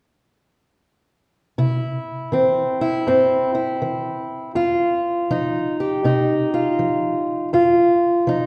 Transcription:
0, 0, Header, 1, 2, 480
1, 0, Start_track
1, 0, Tempo, 743494
1, 1019, Time_signature, 4, 2, 24, 8
1, 5463, End_track
2, 0, Start_track
2, 0, Title_t, "Steel-string acoustic guitar"
2, 0, Program_c, 0, 25
2, 1021, Note_on_c, 0, 48, 60
2, 1023, Note_on_c, 0, 64, 54
2, 1467, Note_off_c, 0, 48, 0
2, 1497, Note_on_c, 0, 52, 54
2, 1505, Note_on_c, 0, 60, 51
2, 1808, Note_off_c, 0, 64, 0
2, 1816, Note_on_c, 0, 64, 53
2, 1945, Note_off_c, 0, 52, 0
2, 1981, Note_on_c, 0, 43, 59
2, 1984, Note_off_c, 0, 60, 0
2, 1987, Note_on_c, 0, 60, 60
2, 2282, Note_off_c, 0, 64, 0
2, 2290, Note_on_c, 0, 64, 46
2, 2427, Note_off_c, 0, 43, 0
2, 2464, Note_on_c, 0, 52, 52
2, 2909, Note_off_c, 0, 52, 0
2, 2939, Note_off_c, 0, 64, 0
2, 2939, Note_on_c, 0, 41, 58
2, 2942, Note_on_c, 0, 65, 61
2, 3386, Note_off_c, 0, 41, 0
2, 3423, Note_off_c, 0, 60, 0
2, 3425, Note_on_c, 0, 53, 53
2, 3425, Note_on_c, 0, 63, 54
2, 3742, Note_off_c, 0, 65, 0
2, 3745, Note_on_c, 0, 67, 51
2, 3869, Note_off_c, 0, 53, 0
2, 3901, Note_on_c, 0, 48, 58
2, 3905, Note_off_c, 0, 63, 0
2, 3907, Note_on_c, 0, 63, 58
2, 4218, Note_off_c, 0, 67, 0
2, 4221, Note_on_c, 0, 65, 50
2, 4347, Note_off_c, 0, 48, 0
2, 4383, Note_on_c, 0, 53, 55
2, 4827, Note_off_c, 0, 53, 0
2, 4843, Note_off_c, 0, 63, 0
2, 4862, Note_on_c, 0, 41, 61
2, 4863, Note_off_c, 0, 65, 0
2, 4866, Note_on_c, 0, 65, 59
2, 5306, Note_off_c, 0, 41, 0
2, 5339, Note_on_c, 0, 53, 54
2, 5350, Note_on_c, 0, 63, 53
2, 5463, Note_off_c, 0, 53, 0
2, 5463, Note_off_c, 0, 63, 0
2, 5463, Note_off_c, 0, 65, 0
2, 5463, End_track
0, 0, End_of_file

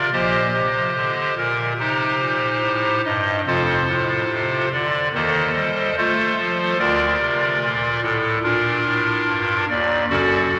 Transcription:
0, 0, Header, 1, 2, 480
1, 0, Start_track
1, 0, Key_signature, -2, "major"
1, 0, Tempo, 836820
1, 65, Time_signature, 4, 2, 24, 8
1, 3425, Tempo, 827586
1, 6106, End_track
2, 0, Start_track
2, 0, Title_t, "Pipe organ"
2, 0, Program_c, 0, 19
2, 72, Note_on_c, 0, 46, 76
2, 72, Note_on_c, 0, 75, 124
2, 74, Note_on_c, 0, 67, 90
2, 75, Note_on_c, 0, 34, 69
2, 75, Note_on_c, 0, 72, 84
2, 274, Note_off_c, 0, 46, 0
2, 276, Note_off_c, 0, 34, 0
2, 316, Note_on_c, 0, 48, 58
2, 516, Note_off_c, 0, 48, 0
2, 552, Note_on_c, 0, 50, 62
2, 754, Note_off_c, 0, 50, 0
2, 769, Note_off_c, 0, 75, 0
2, 770, Note_off_c, 0, 67, 0
2, 770, Note_off_c, 0, 72, 0
2, 789, Note_on_c, 0, 46, 65
2, 789, Note_on_c, 0, 70, 93
2, 994, Note_off_c, 0, 46, 0
2, 994, Note_off_c, 0, 70, 0
2, 1028, Note_on_c, 0, 48, 75
2, 1031, Note_on_c, 0, 67, 69
2, 1032, Note_on_c, 0, 63, 66
2, 1032, Note_on_c, 0, 72, 92
2, 1233, Note_off_c, 0, 48, 0
2, 1275, Note_on_c, 0, 46, 67
2, 1476, Note_off_c, 0, 46, 0
2, 1510, Note_on_c, 0, 45, 75
2, 1713, Note_off_c, 0, 45, 0
2, 1728, Note_off_c, 0, 63, 0
2, 1728, Note_off_c, 0, 67, 0
2, 1728, Note_off_c, 0, 72, 0
2, 1750, Note_on_c, 0, 75, 109
2, 1752, Note_on_c, 0, 43, 71
2, 1953, Note_off_c, 0, 75, 0
2, 1954, Note_off_c, 0, 43, 0
2, 1990, Note_on_c, 0, 41, 82
2, 1991, Note_on_c, 0, 29, 83
2, 1991, Note_on_c, 0, 69, 93
2, 1992, Note_on_c, 0, 72, 117
2, 1993, Note_on_c, 0, 65, 89
2, 2194, Note_off_c, 0, 29, 0
2, 2194, Note_off_c, 0, 41, 0
2, 2225, Note_on_c, 0, 45, 68
2, 2430, Note_off_c, 0, 45, 0
2, 2463, Note_on_c, 0, 48, 68
2, 2670, Note_off_c, 0, 48, 0
2, 2689, Note_off_c, 0, 69, 0
2, 2689, Note_off_c, 0, 72, 0
2, 2690, Note_off_c, 0, 65, 0
2, 2709, Note_on_c, 0, 74, 104
2, 2715, Note_on_c, 0, 50, 69
2, 2913, Note_off_c, 0, 74, 0
2, 2916, Note_off_c, 0, 50, 0
2, 2948, Note_on_c, 0, 39, 74
2, 2950, Note_on_c, 0, 51, 74
2, 2951, Note_on_c, 0, 69, 96
2, 2952, Note_on_c, 0, 75, 113
2, 2953, Note_on_c, 0, 72, 88
2, 3152, Note_off_c, 0, 39, 0
2, 3153, Note_off_c, 0, 51, 0
2, 3189, Note_on_c, 0, 55, 74
2, 3391, Note_off_c, 0, 55, 0
2, 3413, Note_off_c, 0, 69, 0
2, 3414, Note_off_c, 0, 72, 0
2, 3414, Note_off_c, 0, 75, 0
2, 3428, Note_on_c, 0, 72, 123
2, 3429, Note_on_c, 0, 57, 73
2, 3430, Note_on_c, 0, 65, 81
2, 3431, Note_on_c, 0, 69, 85
2, 3631, Note_off_c, 0, 57, 0
2, 3663, Note_on_c, 0, 53, 74
2, 3868, Note_off_c, 0, 53, 0
2, 3889, Note_off_c, 0, 65, 0
2, 3892, Note_off_c, 0, 72, 0
2, 3893, Note_off_c, 0, 69, 0
2, 3898, Note_on_c, 0, 50, 86
2, 3900, Note_on_c, 0, 74, 124
2, 3901, Note_on_c, 0, 38, 93
2, 3901, Note_on_c, 0, 65, 101
2, 3901, Note_on_c, 0, 70, 109
2, 4107, Note_off_c, 0, 50, 0
2, 4108, Note_off_c, 0, 38, 0
2, 4140, Note_on_c, 0, 48, 72
2, 4348, Note_off_c, 0, 48, 0
2, 4379, Note_on_c, 0, 46, 77
2, 4585, Note_off_c, 0, 46, 0
2, 4602, Note_off_c, 0, 74, 0
2, 4603, Note_off_c, 0, 65, 0
2, 4603, Note_off_c, 0, 70, 0
2, 4620, Note_on_c, 0, 45, 73
2, 4620, Note_on_c, 0, 69, 112
2, 4824, Note_off_c, 0, 45, 0
2, 4824, Note_off_c, 0, 69, 0
2, 4856, Note_on_c, 0, 65, 81
2, 4857, Note_on_c, 0, 46, 80
2, 4857, Note_on_c, 0, 62, 88
2, 4857, Note_on_c, 0, 70, 94
2, 5063, Note_off_c, 0, 46, 0
2, 5098, Note_on_c, 0, 45, 91
2, 5305, Note_off_c, 0, 45, 0
2, 5341, Note_on_c, 0, 43, 79
2, 5548, Note_off_c, 0, 43, 0
2, 5560, Note_off_c, 0, 62, 0
2, 5560, Note_off_c, 0, 65, 0
2, 5560, Note_off_c, 0, 70, 0
2, 5587, Note_on_c, 0, 39, 82
2, 5588, Note_on_c, 0, 74, 125
2, 5791, Note_off_c, 0, 39, 0
2, 5791, Note_off_c, 0, 74, 0
2, 5817, Note_on_c, 0, 42, 95
2, 5820, Note_on_c, 0, 66, 119
2, 5820, Note_on_c, 0, 74, 127
2, 5821, Note_on_c, 0, 69, 107
2, 5822, Note_on_c, 0, 30, 93
2, 6025, Note_off_c, 0, 42, 0
2, 6029, Note_off_c, 0, 30, 0
2, 6065, Note_on_c, 0, 46, 72
2, 6106, Note_off_c, 0, 46, 0
2, 6106, Note_off_c, 0, 66, 0
2, 6106, Note_off_c, 0, 69, 0
2, 6106, Note_off_c, 0, 74, 0
2, 6106, End_track
0, 0, End_of_file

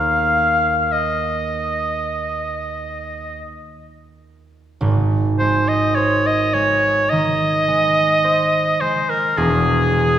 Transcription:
0, 0, Header, 1, 3, 480
1, 0, Start_track
1, 0, Key_signature, -4, "major"
1, 0, Tempo, 1327434
1, 1284, Tempo, 1263158
1, 1763, Time_signature, 4, 2, 24, 8
1, 1764, Tempo, 1140684
1, 3204, Tempo, 1113173
1, 4045, End_track
2, 0, Start_track
2, 0, Title_t, "Oboe"
2, 0, Program_c, 0, 68
2, 0, Note_on_c, 0, 77, 100
2, 333, Note_on_c, 0, 75, 71
2, 338, Note_off_c, 0, 77, 0
2, 1283, Note_off_c, 0, 75, 0
2, 2007, Note_on_c, 0, 72, 94
2, 2129, Note_on_c, 0, 75, 93
2, 2135, Note_off_c, 0, 72, 0
2, 2242, Note_on_c, 0, 73, 92
2, 2249, Note_off_c, 0, 75, 0
2, 2375, Note_on_c, 0, 75, 102
2, 2382, Note_off_c, 0, 73, 0
2, 2490, Note_on_c, 0, 73, 99
2, 2496, Note_off_c, 0, 75, 0
2, 2725, Note_on_c, 0, 75, 114
2, 2731, Note_off_c, 0, 73, 0
2, 3451, Note_on_c, 0, 72, 90
2, 3457, Note_off_c, 0, 75, 0
2, 3575, Note_on_c, 0, 70, 86
2, 3581, Note_off_c, 0, 72, 0
2, 3695, Note_on_c, 0, 68, 100
2, 3702, Note_off_c, 0, 70, 0
2, 4045, Note_off_c, 0, 68, 0
2, 4045, End_track
3, 0, Start_track
3, 0, Title_t, "Harp"
3, 0, Program_c, 1, 46
3, 0, Note_on_c, 1, 39, 61
3, 0, Note_on_c, 1, 58, 44
3, 0, Note_on_c, 1, 67, 44
3, 0, Note_on_c, 1, 70, 44
3, 1230, Note_off_c, 1, 39, 0
3, 1235, Note_off_c, 1, 58, 0
3, 1238, Note_off_c, 1, 67, 0
3, 1243, Note_off_c, 1, 70, 0
3, 1761, Note_on_c, 1, 32, 74
3, 1764, Note_on_c, 1, 44, 76
3, 2016, Note_on_c, 1, 56, 62
3, 2250, Note_on_c, 1, 72, 65
3, 2486, Note_off_c, 1, 56, 0
3, 2491, Note_on_c, 1, 56, 54
3, 2733, Note_on_c, 1, 51, 62
3, 2965, Note_off_c, 1, 56, 0
3, 2970, Note_on_c, 1, 56, 61
3, 3201, Note_off_c, 1, 72, 0
3, 3206, Note_on_c, 1, 72, 57
3, 3407, Note_off_c, 1, 32, 0
3, 3410, Note_off_c, 1, 44, 0
3, 3448, Note_off_c, 1, 56, 0
3, 3453, Note_on_c, 1, 56, 57
3, 3694, Note_on_c, 1, 28, 68
3, 3697, Note_on_c, 1, 40, 72
3, 3709, Note_off_c, 1, 72, 0
3, 3711, Note_off_c, 1, 51, 0
3, 3925, Note_off_c, 1, 56, 0
3, 3930, Note_on_c, 1, 56, 59
3, 4045, Note_off_c, 1, 28, 0
3, 4045, Note_off_c, 1, 40, 0
3, 4045, Note_off_c, 1, 56, 0
3, 4045, End_track
0, 0, End_of_file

